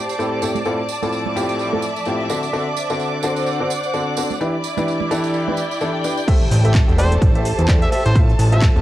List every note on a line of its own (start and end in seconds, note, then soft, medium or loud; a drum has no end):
0.00 1.32 G4 medium
0.00 1.32 C5 medium
0.00 6.29 D5 medium
0.00 3.15 A5 medium
0.00 6.29 D6 medium
0.09 tambourine soft
0.19 0.40 A2 medium
0.19 0.40 C4 medium
0.19 0.40 E4 medium
0.19 0.40 G4 medium
0.19 0.40 A4 medium
0.19 tambourine soft
0.19 shaker soft
0.33 shaker soft
0.42 0.55 A2 medium
0.42 0.55 C4 medium
0.42 0.55 E4 medium
0.42 0.55 G4 medium
0.42 0.55 A4 medium
0.42 tambourine medium
0.42 shaker medium
0.55 tambourine soft
0.55 high conga medium
0.65 0.79 A2 medium
0.65 2.30 A3 medium
0.65 0.79 C4 medium
0.65 0.79 E4 medium
0.65 0.79 F4 medium
0.65 0.79 A4 medium
0.65 tambourine soft
0.65 shaker soft
0.79 shaker soft
0.89 tambourine medium
0.89 shaker medium
1.02 1.34 A2 medium
1.02 2.29 F3 medium
1.02 1.34 C4 medium
1.02 1.34 E4 medium
1.02 1.34 F4 medium
1.02 1.33 A4 medium
1.02 tambourine soft
1.02 high conga medium
1.12 tambourine soft
1.12 shaker soft
1.24 3.15 E5 medium
1.24 high conga medium
1.24 shaker soft
1.36 1.70 A2 medium
1.36 1.70 C4 medium
1.36 1.70 E4 medium
1.36 1.70 F4 medium
1.36 1.70 G4 medium
1.36 tambourine medium
1.36 shaker medium
1.49 tambourine soft
1.59 tambourine soft
1.59 shaker soft
1.73 1.82 A2 medium
1.73 1.82 C4 medium
1.73 1.82 E4 medium
1.73 1.82 F4 medium
1.73 1.82 A4 medium
1.73 high conga soft
1.82 tambourine medium
1.82 shaker medium
1.96 tambourine soft
2.05 2.27 A2 medium
2.05 2.27 C4 medium
2.05 2.27 E4 medium
2.05 2.27 F4 medium
2.05 2.27 G4 medium
2.05 tambourine soft
2.05 shaker soft
2.29 2.43 D3 medium
2.29 2.43 C4 medium
2.29 5.16 D4 medium
2.29 2.43 D4 medium
2.29 2.43 F#4 medium
2.29 2.43 A4 medium
2.29 tambourine medium
2.29 shaker medium
2.43 tambourine soft
2.53 2.66 D3 medium
2.53 2.66 C4 medium
2.53 2.66 D4 medium
2.53 2.66 F#4 medium
2.53 2.66 A4 medium
2.53 tambourine soft
2.53 shaker soft
2.67 4.41 C5 medium
2.67 shaker soft
2.77 tambourine medium
2.77 shaker medium
2.90 3.21 D3 medium
2.90 3.21 C4 medium
2.90 3.21 D4 medium
2.90 3.21 F#4 medium
2.90 3.21 A4 medium
2.90 tambourine soft
2.90 shaker soft
2.99 tambourine soft
2.99 shaker soft
3.14 shaker soft
3.23 3.57 D3 medium
3.23 3.57 C4 medium
3.23 3.57 D4 medium
3.23 3.57 F#4 medium
3.23 3.57 A4 medium
3.23 4.41 F#5 medium
3.23 tambourine medium
3.23 shaker medium
3.36 tambourine soft
3.36 shaker soft
3.46 tambourine soft
3.46 shaker soft
3.60 3.70 D3 medium
3.60 3.70 C4 medium
3.60 3.70 D4 medium
3.60 3.70 F#4 medium
3.60 3.70 A4 medium
3.60 shaker soft
3.70 tambourine medium
3.70 shaker medium
3.83 tambourine soft
3.94 4.15 D3 medium
3.94 4.15 C4 medium
3.94 4.15 D4 medium
3.94 4.15 F#4 medium
3.94 4.15 A4 medium
3.94 tambourine soft
3.94 shaker soft
4.08 shaker soft
4.17 4.30 C4 medium
4.17 4.30 D4 medium
4.17 4.30 F#4 medium
4.17 4.30 A4 medium
4.17 tambourine medium
4.17 shaker medium
4.30 tambourine soft
4.30 high conga soft
4.30 shaker soft
4.40 4.54 E3 medium
4.40 4.54 D4 medium
4.40 4.54 E4 medium
4.40 7.04 E4 medium
4.40 4.54 G4 medium
4.40 4.54 B4 medium
4.40 tambourine soft
4.40 shaker soft
4.50 7.04 D5 medium
4.54 shaker soft
4.64 tambourine medium
4.64 shaker medium
4.77 5.08 E3 medium
4.77 5.08 D4 medium
4.77 5.08 E4 medium
4.77 5.08 G4 medium
4.77 5.08 B4 medium
4.77 tambourine soft
4.77 high conga medium
4.77 shaker soft
4.88 tambourine soft
4.88 shaker soft
5.00 high conga medium
5.00 shaker soft
5.11 5.45 E3 medium
5.11 5.44 D4 medium
5.11 5.45 E4 medium
5.11 5.45 G4 medium
5.11 5.45 A4 medium
5.11 tambourine medium
5.11 shaker medium
5.17 7.04 G5 medium
5.24 tambourine soft
5.24 shaker soft
5.34 tambourine soft
5.34 shaker soft
5.48 5.57 E3 medium
5.48 5.57 D4 medium
5.48 5.57 E4 medium
5.48 5.57 G4 medium
5.48 5.57 B4 medium
5.48 high conga medium
5.48 shaker soft
5.57 tambourine medium
5.57 shaker medium
5.71 tambourine soft
5.71 shaker soft
5.81 6.02 E3 medium
5.81 6.02 D4 medium
5.81 6.02 E4 medium
5.81 6.02 G4 medium
5.81 6.02 A4 medium
5.81 tambourine soft
5.81 shaker soft
5.95 shaker soft
6.04 6.18 D4 medium
6.04 6.18 E4 medium
6.04 6.18 G4 medium
6.04 6.18 B4 medium
6.04 tambourine medium
6.04 shaker medium
6.17 tambourine soft
6.17 shaker soft
6.28 6.41 A3 medium
6.28 6.41 G4 medium
6.28 8.81 G4 medium
6.28 6.41 A4 medium
6.28 8.81 A4 medium
6.28 6.41 C5 medium
6.28 6.41 E5 loud
6.28 8.81 A5 medium
6.28 kick loud
6.28 closed hi-hat medium
6.28 crash loud
6.28 ride medium
6.28 impact medium
6.28 shaker soft
6.42 8.81 C5 medium
6.42 shaker soft
6.51 6.83 A1 loud
6.51 open hi-hat loud
6.51 shaker medium
6.65 6.96 A3 medium
6.65 6.96 G4 medium
6.65 6.96 A4 medium
6.65 6.96 C5 medium
6.65 6.96 E5 medium
6.65 closed hi-hat medium
6.65 shaker soft
6.75 kick loud
6.75 clap loud
6.75 closed hi-hat medium
6.75 ride medium
6.75 shaker soft
6.88 7.18 E1 loud
6.88 shaker soft
6.98 7.32 A3 medium
6.98 7.32 G4 medium
6.98 7.32 A4 medium
6.98 7.13 C5 medium
6.98 7.32 C5 medium
6.98 7.32 D5 loud
6.98 open hi-hat medium
6.98 shaker medium
7.12 8.81 A5 medium
7.12 closed hi-hat medium
7.12 shaker soft
7.22 7.53 A1 medium
7.22 kick loud
7.22 closed hi-hat medium
7.22 ride medium
7.22 shaker soft
7.35 7.45 A3 medium
7.35 7.45 G4 medium
7.35 7.45 A4 medium
7.35 7.45 C5 medium
7.35 7.45 E5 medium
7.35 closed hi-hat soft
7.35 shaker soft
7.45 open hi-hat loud
7.45 shaker medium
7.59 7.88 E2 medium
7.59 closed hi-hat medium
7.59 shaker soft
7.68 7.90 A3 medium
7.68 7.90 G4 medium
7.68 7.90 A4 medium
7.68 7.90 C5 medium
7.68 7.90 D5 medium
7.68 kick loud
7.68 clap loud
7.68 closed hi-hat medium
7.68 ride medium
7.68 shaker soft
7.82 7.88 E5 medium
7.82 closed hi-hat soft
7.82 shaker soft
7.92 8.05 G4 medium
7.92 8.05 A4 medium
7.92 8.05 C5 medium
7.92 8.01 E5 medium
7.92 8.05 E5 medium
7.92 open hi-hat medium
7.92 shaker medium
8.05 8.35 A1 medium
8.05 8.17 C5 loud
8.05 closed hi-hat medium
8.05 shaker soft
8.15 8.29 A3 medium
8.15 8.81 F4 medium
8.15 8.29 F4 medium
8.15 8.29 A4 medium
8.15 8.29 C5 medium
8.15 8.29 E5 loud
8.15 kick loud
8.15 closed hi-hat medium
8.15 ride medium
8.15 shaker soft
8.29 shaker soft
8.39 8.70 A1 loud
8.39 open hi-hat loud
8.39 shaker medium
8.50 8.81 A3 medium
8.50 8.81 F4 medium
8.50 8.81 A4 medium
8.50 8.81 C5 medium
8.50 8.81 E5 medium
8.50 8.64 E5 medium
8.50 8.81 E5 medium
8.50 closed hi-hat medium
8.50 shaker soft
8.62 kick loud
8.62 clap loud
8.62 closed hi-hat medium
8.62 ride medium
8.62 shaker soft
8.76 8.81 E1 loud
8.76 shaker soft